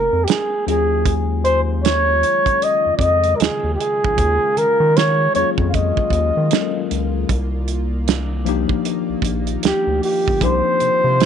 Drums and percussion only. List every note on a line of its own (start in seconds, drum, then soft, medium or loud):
0.28 snare loud
0.28 closed hi-hat loud
0.68 closed hi-hat medium
1.06 kick loud
1.06 closed hi-hat medium
1.45 closed hi-hat medium
1.85 snare loud
1.85 closed hi-hat medium
2.23 closed hi-hat medium
2.46 kick medium
2.46 closed hi-hat soft
2.62 closed hi-hat medium
2.99 kick medium
2.99 closed hi-hat medium
3.24 closed hi-hat soft
3.40 snare loud
3.40 closed hi-hat medium
3.80 closed hi-hat medium
4.04 kick loud
4.18 kick loud
4.18 closed hi-hat medium
4.57 closed hi-hat medium
4.97 snare loud
4.97 closed hi-hat medium
5.35 closed hi-hat medium
5.58 kick medium
5.74 kick medium
5.74 closed hi-hat medium
5.97 kick medium
6.10 kick medium
6.10 closed hi-hat medium
6.51 snare loud
6.51 closed hi-hat medium
6.91 closed hi-hat medium
7.29 kick loud
7.29 closed hi-hat medium
7.68 closed hi-hat medium
8.08 snare loud
8.08 closed hi-hat medium
8.46 closed hi-hat medium
8.69 kick medium
8.85 closed hi-hat medium
9.22 kick medium
9.22 closed hi-hat medium
9.47 closed hi-hat soft
9.63 snare loud
9.63 closed hi-hat medium
10.03 open hi-hat medium
10.28 kick loud
10.41 kick loud
10.41 closed hi-hat medium
10.80 closed hi-hat medium
11.20 snare loud
11.20 closed hi-hat medium